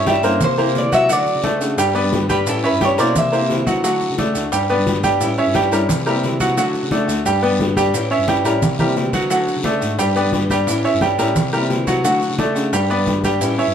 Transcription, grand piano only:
0.07 G3 G4 G5
0.24 A#3 A#4 C5
0.58 A#3 A#4 C5
0.92 F#3 F#4 F#5
1.09 F#3 F#4 F#5
1.44 A3 A4 D5
1.78 G3 G4 G5
1.95 B3 B4 D5
2.29 G3 G4 G5
2.63 C#4 C#5 E5
2.81 G3 G4 G5
2.98 A#3 A#4 C5
3.32 A#3 A#4 C5
3.66 F#3 F#4 F#5
3.84 F#3 F#4 F#5
4.18 A3 A4 D5
4.52 G3 G4 G5
4.70 B3 B4 D5
5.03 G3 G4 G5
5.38 C#4 C#5 E5
5.55 G3 G4 G5
5.72 G3 G4 A#4
6.06 G3 G4 A#4
6.40 F#3 F#4 F#5
6.57 F#3 F#4 F#5
6.92 A3 A4 D5
7.26 G3 G4 G5
7.42 B3 B4 D5
7.77 G3 G4 G5
8.11 C#4 C#5 E5
8.28 G3 G4 G5
8.45 G3 G4 A#4
8.79 G3 G4 A#4
9.13 F#3 F#4 F#5
9.30 F#3 F#4 F#5
9.65 A3 A4 D5
9.98 G3 G4 G5
10.16 B3 B4 D5
10.50 G3 G4 G5
10.85 C#4 C#5 E5
11.01 G3 G4 G5
11.18 G3 G4 A#4
11.53 G3 G4 A#4
11.87 F#3 F#4 F#5
12.04 F#3 F#4 F#5
12.39 A3 A4 D5
12.73 G3 G4 G5
12.90 B3 B4 D5
13.24 G3 G4 G5
13.58 C#4 C#5 E5

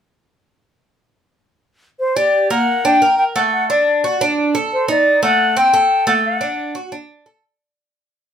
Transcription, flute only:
1.99 C5
2.16 D5
2.51 F#5
2.85 G5
3.18 G5
3.36 F#5
3.53 F#5
3.70 D5
4.73 C5
4.90 D5
5.23 F#5
5.57 G5
6.08 F#5
6.25 F#5

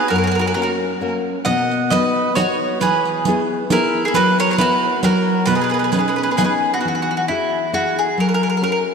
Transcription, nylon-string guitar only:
0.10 F#2
0.56 A#3 C#4 F#4
1.01 A#3 C#4 F#4
1.46 B2
1.92 B3 D#4 F#4
2.36 B3 D#4 F#4
2.80 E3
3.27 B3 E4 G#4
3.71 B3 E4 G#4
4.16 F#3
4.59 B3 E4 F#4
5.03 F#3
5.47 B2
5.93 B3 C#4 D#4
6.39 B3 C#4 D#4
6.85 E3
7.29 E4 F#4 G#4
7.73 E4 F#4 G#4
8.18 F#3
8.62 C#4 F#4 A#4

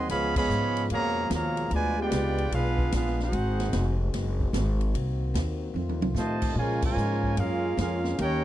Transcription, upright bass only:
0.09 C#2
0.49 G#2
0.90 F2
1.30 D#2
1.71 D2
2.11 C#2
2.51 B1
2.92 A#1
3.32 G#1
3.73 F1
4.14 F#1
4.53 G#1
4.94 C2
5.34 D#2
5.74 F2
5.89 D#2
6.01 C2
6.14 A2
6.55 A#2
6.96 G#2
7.37 F#2
7.77 F2
8.19 D#2

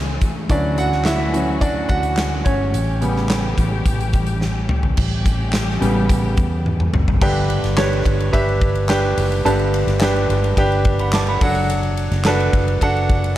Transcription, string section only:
Already playing: E3 A3 C#4
0.50 D3 F#3 C#4 F#4
2.73 E3 G3 G4
4.98 E3 G3 A3 C#4 G4

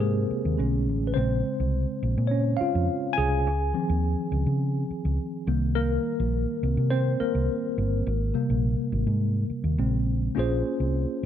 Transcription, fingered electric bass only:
Already playing: G#2
0.30 muted fingered electric bass stroke
0.45 D#2
0.59 B1
0.89 A1
1.17 A#1
1.60 C2
2.03 A#1
2.18 A#2
2.61 muted fingered electric bass stroke
2.75 F2
3.18 C2
3.47 C#2
3.90 D#2
4.32 C#2
4.46 C#3
4.91 muted fingered electric bass stroke
5.05 C#2
5.47 C2
6.20 A#1
6.63 C2
6.77 C3
7.21 muted fingered electric bass stroke
7.35 C2
7.78 G1
8.07 G#1
8.50 A#1
8.92 G#1
9.07 G#2
9.50 muted fingered electric bass stroke
9.64 D#2
9.78 A#1
10.37 A#1
10.80 C2

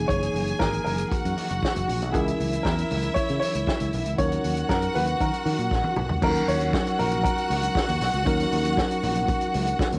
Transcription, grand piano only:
0.08 C#5
0.59 A#4
0.85 A#4
2.13 G#4
2.63 A#4
3.14 C#5
3.40 C#5
4.18 C#5
4.69 A#4
4.95 B4
5.21 A#4
6.23 A#4
6.48 C#5
6.99 A#4
7.24 A#4

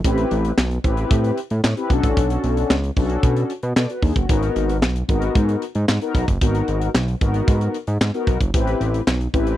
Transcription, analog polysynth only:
0.04 C4 E4 G4 B4
0.84 C4 E4 G4 B4
1.77 C4 E4 G4 B4
1.90 C#4 D4 F#4 A4
2.97 C#4 D4 F#4 A4
3.76 A4 D5
3.90 F#4 B4
4.03 D4 G#4
4.16 C#4 F#4
4.29 B3 D#4 F#4 A#4
5.08 B3 D#4 F#4 A#4
6.01 B3 D#4 F#4 A#4
6.41 B3 D#4 F#4 A#4
7.21 B3 D#4 F#4 A#4
8.14 B3 D#4 F#4 A#4
8.53 C4 E4 G4 B4
9.33 C4 E4 G4 B4

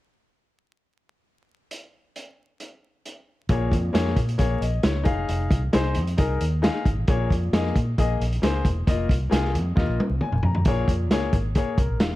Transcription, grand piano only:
3.50 A#2 A#3 G#4 C#5
3.93 A#3 G#4 C#5
4.38 A#3 G#4 C#5
4.61 D#5
4.83 C#5
5.04 D#4 G#4 F5
5.73 D#4 G#4 C5
6.17 D#4 G#4 A#4
6.62 D#4 G#4 F5
7.08 A#2 A#3 G#4 C#5
7.53 A#3 G#4 D#5
7.98 A#3 G#4 D#5
8.42 A#3 G#4 C5
8.87 A#3 F4 D#5
9.30 A#3 F4 G#4
9.75 A#3 F4 D#5
10.22 G#5
10.45 A#5
10.67 A#2 A#3 G#4 C#5
11.12 A#3 G#4 C#5
11.56 A#3 G#4 C#5
11.78 A#4
12.01 F5

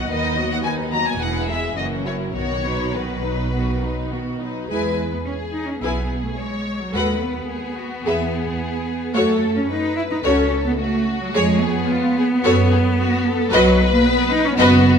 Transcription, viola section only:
Already playing: F#3 B3
0.11 D#3 D#4
0.39 F#3 B3
0.65 D#3 D#4
0.92 F#3 B3
1.20 E3 B3
1.48 G#3
1.76 E3 A#3
2.06 F#3 C#4
2.37 D#3 B3
2.66 F#3 D#4
2.95 D#3 B3
3.24 F#3 D#4
3.54 D#3 B3
3.84 F#3 D#4
4.13 D#3 B3
4.41 F#3 D#4
4.70 E4 G#4
5.82 E4 G#4
6.93 F#4 A4
8.05 G#4
9.15 F#4 A4
10.24 F#4 A4
11.35 G#4
12.44 F#4 A4
13.52 F#4 B4
14.59 F#4 B4

